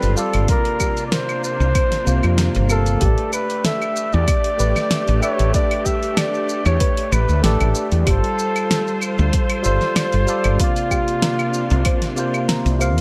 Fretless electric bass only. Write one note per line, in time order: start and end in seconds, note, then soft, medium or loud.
0.03 0.14 G1 medium
0.34 0.46 G1 medium
1.60 1.72 C2 medium
2.07 2.20 C2 medium
2.24 2.47 F2 medium
2.56 2.96 G1 loud
3.02 3.15 A1 loud
4.14 4.25 E2 loud
4.60 4.73 A1 medium
5.09 5.20 A1 medium
5.40 5.51 A1 loud
6.66 6.77 E2 loud
7.12 7.25 A1 loud
7.29 7.40 D2 medium
7.44 7.57 A1 medium
7.61 7.72 A1 loud
7.92 8.03 E2 medium
8.07 8.20 G1 loud
9.19 9.30 D2 loud
9.65 9.78 G1 medium
10.14 10.25 G1 medium
10.45 10.56 G1 loud
11.71 11.83 C2 loud
12.66 12.97 C2 loud
12.97 13.01 F2 medium